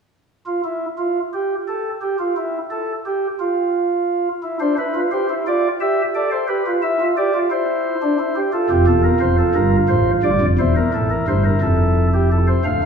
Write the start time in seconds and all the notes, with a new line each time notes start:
0.46 F4
0.64 E4
0.98 F4
1.33 G4
1.68 A4
2.01 G4
2.19 F4
2.37 E4
2.70 A4
3.06 G4
3.40 F4
4.43 E4
4.60 D4 C5
4.78 E4 B4
4.95 F4
5.12 G4 C5
5.30 E4
5.47 F4 D5
5.81 G4 E5
6.14 A4 D5
6.32 C5
6.48 G4 B4
6.66 F4
6.82 E4 E5
7.00 F4
7.17 G4 D5
7.34 F4
7.51 E4 C5
8.02 D4
8.19 E4
8.36 G4
8.53 F4 A4
8.70 F1 F2 G4
8.87 E1 E2 A4
9.04 A#4
9.20 F1 F2 C5
9.38 A4
9.55 G1 G2 A#4
9.89 A1 A2 C5
10.23 G1 G2 D5
10.41 F1 F2
10.58 E1 E2 E4 C5
10.76 A#4
10.94 A1 A2 A4
11.10 A#4
11.28 G1 G2 C5
11.45 A#4
11.61 F1 F2 A4
12.14 G4
12.32 A4
12.47 C5
12.64 D1 D2 A3 F5